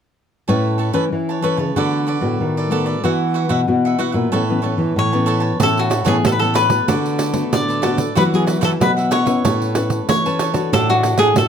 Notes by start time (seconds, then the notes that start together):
0.48 A2 A3 C#4 E4 A4 B4 C#5 A5
0.78 A4 B4 C#5 A5
0.93 E3 C#4 E4 A4 B4 C#5 A5
1.12 E3
1.29 B4 C#5 A5
1.42 C#4 E4 A4 B4 C#5 A5
1.57 C#3 B4 C#5 A5
1.75 D3 A3 B3 F#4 A4 B4 D5
2.07 F#4 A4 B4 D5
2.21 A2 A3 B3 F#4
2.39 A2 D#3
2.57 A4 B4 D5
2.70 A3 B3 F#4 A4 B4 D5
2.86 A4 B4 D5
3.03 E3 B3 E4 F#4 B4 E5 F#5
3.34 F#4 B4 E5 F#5
3.49 B2 F#4 B4 E5 F#5
3.67 B2 B3 E4 F#4
3.85 B4 E5 F#5
3.98 B3 E4 F#4 B4 E5 F#5
4.12 A#2 B4 E5 F#5
4.32 A2 E3 B3 C#4 A4 B4 C#5 A5
4.49 E3 B3 C#4
4.62 E3 B3 C#4 A4 B4 C#5 A5
4.78 E3
4.96 A2 E3 C#5
5.12 E3 B3 C#4 B4 C#5 A5
5.26 A4 B4 C#5 A5
5.40 B4 C#5 A5
5.60 A2 E3 B3 C#4 A4 B4 C#5 A5, pandeiro
5.77 F#4, pandeiro
5.90 A4 B4 C#5 A5, pandeiro
6.04 A2 E3 B3 C#4 G#4 A4 B4 C#5 A5, pandeiro
6.24 A2 E3 A4, pandeiro
6.32 B4
6.39 E3 B3 C#4 A4 B4 C#5 A5, pandeiro
6.54 A4 B4 C#5 A5, pandeiro
6.69 A3 B3 F#4 B4 C#5 A5, pandeiro
6.88 D3 F#4 A4 B4 D5, pandeiro
7.06 pandeiro
7.18 F#4 A4 B4 D5, pandeiro
7.33 A3 B3 F#4, pandeiro
7.52 A2 D3 D5, pandeiro
7.69 A4 B4 D5, pandeiro
7.82 A3 B3 F#4 A4 B4 D5, pandeiro
7.97 A4 B4 D5, pandeiro
8.15 E3 F#3 B3 F#4 B4 E5 F#5, pandeiro
8.32 F#3 B3 F#4 G#4, pandeiro
8.47 F#4 B4 E5 F#5, pandeiro
8.61 E3 F#4 A4 B4 E5 F#5, pandeiro
8.80 B2 F#3 B3 F#4 B4, pandeiro
8.97 B4 E5 F#5, pandeiro
9.11 F#4 B4 C#5 E5 F#5, pandeiro
9.25 C#4 E4 B4 E5 F#5, pandeiro
9.44 A2 A3 A4 B4 C#5 A5, pandeiro
9.62 pandeiro
9.75 C#4 E4 A4 B4 C#5 A5, pandeiro
9.90 pandeiro
10.08 E3 A3 C#5, pandeiro
10.25 C#4 E4 B4 C#5 A5, pandeiro
10.39 A4 B4 C#5 A5, pandeiro
10.54 D4 F#4 A4 B4 C#5 A5, pandeiro
10.72 A2 A3 D4 A4 D5 F#5, pandeiro
10.89 D4 F#4 A4, pandeiro
11.03 D4 A4 D5 F#5, pandeiro
11.18 A2 D4 G#4 A4 D5 F#5, pandeiro
11.36 A2 A3 D4 F#4 A4, pandeiro